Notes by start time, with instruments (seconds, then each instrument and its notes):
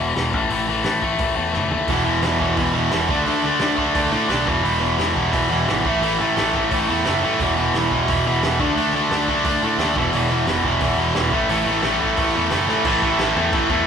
Already playing: picked electric bass E1, overdriven electric guitar E2 B2
0.00 overdriven electric guitar E3
0.15 picked electric bass E1, overdriven electric guitar E2 B2 E3, snare, open hi-hat
0.33 picked electric bass A1, overdriven electric guitar A2 E3 A3, kick
0.49 picked electric bass A1, overdriven electric guitar A2 E3 A3, open hi-hat
0.67 picked electric bass A1, overdriven electric guitar A2 E3 A3
0.84 picked electric bass A1, overdriven electric guitar A2 E3 A3, snare, open hi-hat
1.02 overdriven electric guitar A2 E3 A3, kick
1.18 picked electric bass A1, overdriven electric guitar A2 E3 A3, kick, open hi-hat
1.35 picked electric bass E2, overdriven electric guitar A2 E3 A3
1.53 picked electric bass F#1, overdriven electric guitar A2 E3 A3, snare
1.70 picked electric bass D#2, overdriven electric guitar A2 E3 A3, floor tom
1.88 picked electric bass E1, overdriven electric guitar E2 B2 E3, kick, open hi-hat
2.04 overdriven electric guitar E2 B2 E3
2.21 picked electric bass E1, overdriven electric guitar E2 B2 E3, snare, open hi-hat
2.39 picked electric bass E1, overdriven electric guitar E2 B2 E3, kick
2.57 picked electric bass E1, overdriven electric guitar E2 B2 E3, kick, open hi-hat
2.73 picked electric bass E1, overdriven electric guitar E2 B2 E3
2.91 picked electric bass E1, overdriven electric guitar E2 B2 E3, snare, open hi-hat
3.09 picked electric bass D2, overdriven electric guitar D3 A3 D4, kick
3.26 picked electric bass D2, overdriven electric guitar D3 A3 D4, open hi-hat
3.44 picked electric bass D2, overdriven electric guitar D3 A3 D4
3.59 picked electric bass D2, overdriven electric guitar D3 A3 D4, snare, open hi-hat
3.77 overdriven electric guitar D3 A3 D4, kick
3.95 picked electric bass D2, overdriven electric guitar D3 A3 D4, kick, open hi-hat
4.12 picked electric bass A2, overdriven electric guitar D3 A3 D4
4.29 picked electric bass B1, overdriven electric guitar D3 A3 D4, snare, open hi-hat
4.45 picked electric bass E1, overdriven electric guitar E2 B2 E3, kick
4.63 picked electric bass E1, overdriven electric guitar E2 B2 E3, open hi-hat
4.80 overdriven electric guitar E2 B2 E3
4.98 picked electric bass E1, overdriven electric guitar E2 B2 E3, snare, open hi-hat
5.15 picked electric bass E1, overdriven electric guitar E2 B2 E3, kick
5.31 picked electric bass E1, overdriven electric guitar E2 B2 E3, kick, open hi-hat
5.49 picked electric bass E1, overdriven electric guitar E2 B2 E3
5.68 picked electric bass G#1, overdriven electric guitar E2 B2 E3, snare, open hi-hat
5.85 picked electric bass A1, overdriven electric guitar A2 E3 A3, kick
6.01 picked electric bass A1, overdriven electric guitar A2 E3 A3, open hi-hat
6.20 picked electric bass A1, overdriven electric guitar A2 E3 A3
6.37 picked electric bass A1, overdriven electric guitar A2 E3 A3, snare, open hi-hat
6.54 overdriven electric guitar A2 E3 A3, kick
6.71 picked electric bass A1, overdriven electric guitar A2 E3 A3, kick, open hi-hat
6.89 picked electric bass E2, overdriven electric guitar A2 E3 A3
7.05 picked electric bass F#1, overdriven electric guitar A2 E3 A3, snare, open hi-hat
7.22 picked electric bass A2, overdriven electric guitar A2 E3 A3
7.39 picked electric bass E1, overdriven electric guitar E2 B2 E3, kick, open hi-hat
7.57 overdriven electric guitar E2 B2 E3
7.74 picked electric bass E1, overdriven electric guitar E2 B2 E3, snare, open hi-hat
7.91 picked electric bass E1, overdriven electric guitar E2 B2 E3, kick
8.08 picked electric bass E1, overdriven electric guitar E2 B2 E3, kick, open hi-hat
8.26 picked electric bass E1, overdriven electric guitar E2 B2 E3
8.42 picked electric bass E1, overdriven electric guitar E2 B2 E3, snare, open hi-hat
8.60 picked electric bass D2, overdriven electric guitar D3 A3 D4, kick
8.76 picked electric bass D2, overdriven electric guitar D3 A3 D4, open hi-hat
8.93 picked electric bass D2, overdriven electric guitar D3 A3 D4
9.10 picked electric bass D2, overdriven electric guitar D3 A3 D4, snare, open hi-hat
9.28 overdriven electric guitar D3 A3 D4, kick
9.44 picked electric bass D2, overdriven electric guitar D3 A3 D4, kick, open hi-hat
9.63 picked electric bass A2, overdriven electric guitar D3 A3 D4
9.78 picked electric bass D#2, overdriven electric guitar D3 A3 D4, snare, open hi-hat
9.96 picked electric bass E1, overdriven electric guitar E2 B2 E3, kick
10.13 picked electric bass E1, overdriven electric guitar E2 B2 E3, open hi-hat
10.31 overdriven electric guitar E2 B2 E3
10.47 picked electric bass E1, overdriven electric guitar E2 B2 E3, snare, open hi-hat
10.63 picked electric bass E1, overdriven electric guitar E2 B2, kick
10.67 overdriven electric guitar E3
10.80 picked electric bass E1, overdriven electric guitar E2 B2 E3, kick, open hi-hat
10.97 picked electric bass E1, overdriven electric guitar E2 B2 E3
11.14 picked electric bass E1, overdriven electric guitar E2 B2 E3, snare, open hi-hat
11.32 picked electric bass A1, overdriven electric guitar A2 E3 A3, kick
11.49 picked electric bass A1, overdriven electric guitar A2 E3 A3, open hi-hat
11.66 picked electric bass A1, overdriven electric guitar A2 E3 A3
11.82 picked electric bass A1, overdriven electric guitar A2 E3 A3, snare, open hi-hat
12.00 overdriven electric guitar A2 E3 A3, kick
12.17 picked electric bass A1, overdriven electric guitar A2 E3 A3, kick, open hi-hat
12.35 picked electric bass E2, overdriven electric guitar A2 E3 A3
12.51 picked electric bass F#1, overdriven electric guitar A2 E3 A3, snare, open hi-hat
12.69 picked electric bass A2, overdriven electric guitar A2 E3 A3, snare
12.85 picked electric bass A1, overdriven electric guitar A2 E3 A3, kick, crash
13.02 picked electric bass A1, overdriven electric guitar A2 E3 A3, kick, crash
13.18 picked electric bass A1, overdriven electric guitar A2 E3 A3, snare, crash
13.36 picked electric bass E2, overdriven electric guitar A2 E3 A3, crash
13.52 picked electric bass A1, overdriven electric guitar A2 E3 A3, kick, crash
13.69 picked electric bass E2, overdriven electric guitar A2 E3 A3, kick, crash